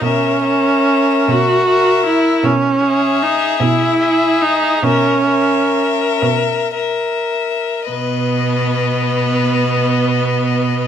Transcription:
0.02 1.13 B2 soft
0.02 1.32 C#4 medium
0.02 0.44 A#4 soft
0.02 0.44 E5 soft
0.44 1.66 A#4 soft
0.44 1.66 E5 soft
1.29 2.29 B2 soft
1.29 2.06 F#4 medium
1.67 2.42 A#4 soft
1.67 2.44 E5 soft
2.06 2.46 E4 medium
2.44 3.45 B2 soft
2.44 3.24 C#4 medium
2.83 3.98 G#4 soft
2.83 3.99 E5 soft
3.22 3.61 D#4 soft
3.60 4.66 B2 soft
3.60 4.43 E4 medium
4.01 4.82 G#4 soft
4.01 4.82 E5 soft
4.42 4.85 D#4 medium
4.83 6.03 B2 soft
4.83 6.23 C#4 medium
4.83 5.27 A#4 soft
4.83 5.26 E5 soft
5.28 6.75 A#4 soft
5.28 6.74 E5 soft
6.23 7.72 B2 soft
6.76 7.89 A#4 soft
6.76 7.89 E5 soft
7.90 10.87 B2 soft
7.90 10.87 B3 soft
7.90 10.87 B4 soft
7.90 10.87 D#5 soft

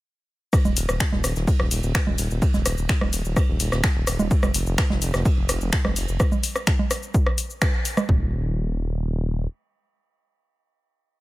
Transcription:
0.53 kick loud
0.53 cross-stick soft
0.53 ride medium
0.53 shaker soft
0.65 0.74 D#1 medium
0.65 low conga medium
0.65 shaker soft
0.77 0.86 D#1 loud
0.77 open hi-hat loud
0.77 ride medium
0.77 shaker medium
0.89 0.98 D#1 medium
0.89 cross-stick soft
0.89 shaker soft
1.00 finger snap loud
1.00 kick loud
1.00 snare loud
1.00 shaker soft
1.12 1.22 D#1 medium
1.12 snare soft
1.12 low conga medium
1.24 1.34 D#1 medium
1.24 cross-stick medium
1.24 open hi-hat medium
1.24 ride medium
1.24 shaker medium
1.36 1.45 D#1 medium
1.36 snare soft
1.36 shaker soft
1.47 kick loud
1.47 ride loud
1.47 shaker soft
1.60 1.69 D#1 medium
1.60 cross-stick soft
1.71 1.81 D#1 loud
1.71 open hi-hat loud
1.71 ride medium
1.71 shaker medium
1.83 1.93 D#1 medium
1.83 shaker soft
1.94 finger snap loud
1.94 kick loud
1.94 cross-stick medium
1.94 snare loud
1.94 ride medium
1.94 shaker soft
2.07 2.16 D#1 medium
2.07 low conga medium
2.18 2.28 D#1 loud
2.18 open hi-hat loud
2.18 ride medium
2.18 shaker medium
2.30 2.40 D#1 medium
2.30 shaker soft
2.41 kick loud
2.41 ride medium
2.41 shaker soft
2.54 2.63 D#1 medium
2.54 snare soft
2.54 low conga medium
2.54 shaker soft
2.66 2.75 D#1 loud
2.66 cross-stick medium
2.66 open hi-hat loud
2.66 ride medium
2.66 shaker medium
2.78 2.87 D#1 medium
2.78 shaker soft
2.88 finger snap loud
2.88 kick loud
2.88 snare loud
2.88 ride medium
2.88 shaker soft
3.01 3.11 D#1 medium
3.01 cross-stick soft
3.01 low conga medium
3.13 3.23 D#1 loud
3.13 open hi-hat medium
3.13 ride medium
3.13 shaker medium
3.25 3.34 D#1 medium
3.25 shaker soft
3.36 kick loud
3.36 cross-stick medium
3.36 ride medium
3.36 shaker soft
3.49 3.58 D#1 medium
3.59 3.70 D#1 loud
3.59 open hi-hat loud
3.59 ride medium
3.59 shaker medium
3.72 3.81 D#1 medium
3.72 cross-stick soft
3.72 snare soft
3.72 shaker soft
3.83 finger snap loud
3.83 kick loud
3.83 snare loud
3.83 ride loud
3.83 shaker soft
3.96 4.05 D#1 medium
4.07 4.17 D#1 loud
4.07 cross-stick medium
4.07 open hi-hat loud
4.07 ride medium
4.07 shaker medium
4.19 4.29 D#1 medium
4.19 low conga medium
4.19 shaker soft
4.31 kick loud
4.31 ride medium
4.31 shaker soft
4.43 4.52 F1 medium
4.43 cross-stick medium
4.43 low conga medium
4.43 shaker soft
4.54 4.64 F1 loud
4.54 open hi-hat loud
4.54 ride medium
4.54 shaker medium
4.67 4.76 F1 medium
4.67 shaker soft
4.78 finger snap loud
4.78 kick loud
4.78 cross-stick medium
4.78 snare loud
4.78 ride medium
4.78 shaker soft
4.90 5.00 F1 medium
4.90 snare medium
4.90 low conga medium
5.02 5.12 F1 loud
5.02 open hi-hat loud
5.02 ride medium
5.02 shaker medium
5.14 5.23 F1 medium
5.14 cross-stick medium
5.14 snare soft
5.14 shaker soft
5.25 kick loud
5.25 ride medium
5.25 shaker soft
5.37 5.47 F1 medium
5.49 5.59 F1 medium
5.49 cross-stick medium
5.49 open hi-hat loud
5.49 ride medium
5.49 shaker medium
5.61 5.70 F1 medium
5.61 shaker soft
5.73 finger snap loud
5.73 kick loud
5.73 snare loud
5.73 ride medium
5.73 shaker soft
5.85 5.94 F1 medium
5.85 cross-stick medium
5.85 low conga medium
5.96 6.06 F1 loud
5.96 open hi-hat loud
5.96 ride medium
5.96 shaker medium
6.08 6.18 F1 medium
6.08 shaker soft
6.20 kick loud
6.20 cross-stick medium
6.20 shaker soft
6.32 low conga medium
6.32 shaker soft
6.44 open hi-hat loud
6.44 shaker medium
6.56 cross-stick medium
6.56 shaker soft
6.67 finger snap loud
6.67 kick loud
6.67 shaker soft
6.79 low conga medium
6.91 cross-stick medium
6.91 open hi-hat loud
6.91 shaker medium
7.03 shaker soft
7.14 kick loud
7.14 shaker soft
7.26 cross-stick medium
7.38 open hi-hat loud
7.38 shaker medium
7.50 shaker soft
7.62 finger snap loud
7.62 kick loud
7.62 cross-stick medium
7.62 shaker soft
7.85 open hi-hat loud
7.85 shaker medium
7.97 cross-stick medium
7.97 low conga medium
7.97 shaker soft
8.09 9.47 D#1 loud
8.09 kick loud
8.09 floor tom loud

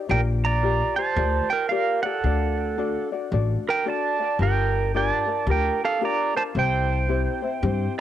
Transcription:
0.09 0.79 A#1 loud
0.09 0.62 F4 medium
0.09 0.62 G4 medium
0.09 0.61 A#4 medium
0.09 0.20 A#4 medium
0.09 0.64 D5 medium
0.09 0.20 G5 loud
0.45 0.95 D5 medium
0.45 0.96 A#5 loud
0.62 0.97 F4 medium
0.62 0.96 G4 medium
0.62 0.96 A#4 medium
0.62 0.95 D5 medium
0.96 1.16 F4 soft
0.96 1.16 G4 soft
0.96 1.48 C5 medium
0.96 1.17 D5 soft
0.96 1.52 A5 loud
1.16 1.38 D2 loud
1.16 1.70 F4 medium
1.16 1.70 G4 medium
1.16 1.69 A#4 medium
1.16 1.72 D5 medium
1.50 1.71 A#4 medium
1.50 1.69 G5 medium
1.69 2.05 F4 medium
1.69 2.04 G4 medium
1.69 2.04 A#4 medium
1.69 2.03 A#4 medium
1.69 2.03 D5 medium
1.69 2.02 F5 medium
2.03 2.24 F4 soft
2.03 2.24 G4 medium
2.03 3.09 A4 medium
2.03 2.24 D5 medium
2.03 3.07 F#5 medium
2.24 2.94 D2 medium
2.24 2.78 D4 medium
2.24 2.77 F#4 medium
2.24 2.77 A4 medium
2.24 2.79 D5 medium
2.78 3.12 D4 medium
2.78 3.12 F#4 medium
2.78 3.12 A4 medium
2.78 3.11 D5 medium
3.12 3.31 D4 soft
3.12 3.32 F#4 soft
3.12 3.32 D5 medium
3.32 3.54 A1 medium
3.32 3.86 D4 medium
3.32 3.85 F#4 medium
3.32 3.84 A4 medium
3.32 3.87 D5 medium
3.69 3.86 A#4 medium
3.69 3.87 G5 medium
3.86 4.20 D4 medium
3.86 4.20 F#4 medium
3.86 4.20 A4 medium
3.86 4.19 D5 medium
3.86 4.37 D5 medium
3.90 4.43 A5 medium
4.20 4.40 D4 soft
4.20 4.40 F#4 soft
4.20 4.40 D5 soft
4.39 5.09 G1 medium
4.39 4.93 D4 medium
4.39 4.94 F4 medium
4.39 4.94 G4 medium
4.39 4.94 A#4 medium
4.39 4.91 A#4 medium
4.39 4.97 G5 medium
4.94 5.28 D4 medium
4.94 5.27 F4 medium
4.94 5.28 G4 medium
4.94 5.26 A#4 medium
4.94 5.45 D5 medium
4.94 5.51 A5 medium
5.27 5.47 D4 soft
5.27 5.47 F4 soft
5.27 5.48 A#4 soft
5.47 5.69 D2 loud
5.47 6.00 D4 medium
5.47 6.01 F4 medium
5.47 6.00 G4 medium
5.47 6.01 A#4 medium
5.47 5.80 A#4 medium
5.51 5.84 G5 medium
5.85 6.02 A4 medium
5.85 6.04 F5 medium
6.01 6.35 D4 medium
6.01 6.35 F4 medium
6.01 6.35 G4 medium
6.01 6.34 A#4 medium
6.01 6.35 D5 medium
6.05 6.37 A#5 medium
6.35 6.55 D4 soft
6.35 6.56 F4 soft
6.35 6.55 A#4 soft
6.35 6.42 C5 medium
6.35 6.42 A5 medium
6.55 7.25 C2 medium
6.55 7.08 C4 medium
6.55 7.08 E4 medium
6.55 7.07 G4 medium
6.55 7.09 C5 medium
6.55 7.94 C5 medium
6.55 7.94 G5 medium
7.08 7.43 C4 medium
7.08 7.42 E4 medium
7.08 7.42 G4 medium
7.08 7.41 C5 medium
7.42 7.62 C4 soft
7.42 7.62 E4 medium
7.42 7.63 C5 medium
7.62 7.85 G2 medium
7.62 8.00 C4 medium
7.62 8.00 E4 medium
7.62 8.00 G4 medium
7.62 8.00 C5 medium

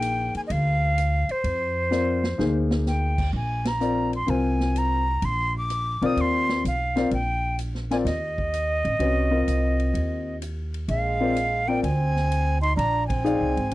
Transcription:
0.00 0.31 A#1 medium
0.00 0.88 A#3 medium
0.00 0.88 D#4 medium
0.00 0.88 G#4 medium
0.00 0.88 C5 medium
0.00 0.36 G5 medium
0.00 hi-hat pedal medium
0.00 ride medium
0.34 0.41 G#5 medium
0.34 muted upright bass stroke soft
0.34 ride soft
0.47 1.25 D2 medium
0.47 0.53 D#5 medium
0.47 ride medium
0.52 1.33 F5 medium
0.98 hi-hat pedal soft
0.98 ride medium
1.29 2.58 C5 medium
1.29 muted upright bass stroke soft
1.29 ride soft
1.44 2.35 F2 medium
1.44 ride medium
1.91 2.20 C4 medium
1.91 2.20 F4 soft
1.91 2.21 A#4 medium
1.91 2.21 D5 medium
1.91 snare soft
1.91 hi-hat pedal soft
2.24 snare medium
2.38 3.30 D2 medium
2.38 3.12 A#3 medium
2.38 3.12 D#4 medium
2.38 3.12 G#4 medium
2.38 3.12 C5 medium
2.38 snare medium
2.71 snare medium
2.86 3.31 G5 medium
2.86 snare soft
2.86 hi-hat pedal medium
3.18 kick medium
3.18 crash medium
3.33 4.24 A#1 medium
3.33 3.69 G#5 medium
3.65 4.14 A#5 medium
3.65 snare medium
3.65 ride medium
3.81 4.10 C4 medium
3.81 4.10 F4 medium
3.81 4.10 A#4 medium
3.81 4.10 D5 medium
3.81 hi-hat pedal medium
4.13 4.31 C6 medium
4.13 ride soft
4.27 5.19 C2 medium
4.27 5.00 C4 medium
4.27 5.01 F4 medium
4.27 5.01 A#4 medium
4.27 5.01 C5 medium
4.27 4.79 G#5 medium
4.27 ride medium
4.60 snare soft
4.76 5.27 A#5 medium
4.76 hi-hat pedal medium
4.76 ride medium
5.22 5.98 A#1 medium
5.22 5.56 C6 medium
5.22 ride medium
5.58 6.07 D6 loud
5.70 hi-hat pedal medium
5.70 ride medium
6.02 6.16 B1 medium
6.02 6.62 C4 medium
6.02 6.62 F4 medium
6.02 6.62 A#4 medium
6.02 6.62 D5 medium
6.02 ride soft
6.06 6.22 D#6 medium
6.16 6.61 D#2 medium
6.16 ride medium
6.21 6.66 C6 medium
6.49 snare medium
6.65 7.09 B1 medium
6.65 7.10 F5 medium
6.65 hi-hat pedal medium
6.65 ride medium
6.96 7.10 C4 medium
6.96 7.10 F4 medium
6.96 7.11 A#4 medium
6.96 7.11 D5 medium
6.96 snare soft
6.96 ride soft
7.11 8.02 A#1 medium
7.11 7.57 G5 medium
7.11 ride medium
7.59 hi-hat pedal medium
7.59 ride medium
7.75 snare soft
7.91 8.05 C4 medium
7.91 8.05 F4 medium
7.91 8.05 A#4 medium
7.91 8.05 D5 medium
7.91 7.97 G#5 medium
7.91 snare soft
7.91 ride soft
8.05 8.81 D#2 medium
8.05 10.38 D#5 medium
8.05 snare soft
8.05 ride medium
8.38 kick medium
8.54 hi-hat pedal soft
8.54 ride medium
8.85 8.98 A1 medium
8.85 ride soft
8.99 9.44 C2 medium
8.99 9.29 C#4 medium
8.99 9.29 F#4 soft
8.99 9.29 B4 soft
8.99 9.30 D#5 medium
8.99 ride soft
9.31 10.32 C4 medium
9.31 10.32 F4 medium
9.31 10.32 A#4 medium
9.31 10.33 D#5 medium
9.48 9.91 C2 medium
9.48 hi-hat pedal medium
9.48 ride medium
9.80 ride soft
9.94 10.85 D#2 medium
9.94 ride medium
10.42 hi-hat pedal medium
10.42 ride medium
10.74 ride soft
10.88 11.79 A#1 medium
10.88 11.69 G#3 medium
10.88 11.70 F5 medium
10.88 ride medium
11.20 11.34 C4 medium
11.20 11.35 F4 medium
11.20 11.35 A#4 medium
11.20 11.35 D5 medium
11.36 hi-hat pedal soft
11.36 ride medium
11.68 11.82 A#3 medium
11.68 11.82 C4 medium
11.68 11.82 F4 medium
11.68 11.82 A#4 medium
11.68 11.83 D5 medium
11.68 11.83 G5 medium
11.82 12.73 D2 medium
11.82 12.58 C4 medium
11.82 12.58 G#5 medium
11.82 ride medium
12.16 snare soft
12.32 hi-hat pedal soft
12.32 ride medium
12.61 12.75 D#4 medium
12.61 12.76 C6 loud
12.61 ride soft
12.76 13.36 A#1 medium
12.76 13.06 D4 medium
12.76 13.07 A#5 medium
12.76 ride medium
13.07 13.74 C4 medium
13.07 13.74 G#5 medium
13.07 kick medium
13.07 ride medium
13.24 13.53 D#4 medium
13.24 13.53 G#4 medium
13.24 13.54 D5 medium
13.24 13.54 F5 medium
13.24 hi-hat pedal medium
13.41 13.55 C2 medium
13.57 13.71 G#1 medium
13.57 ride soft

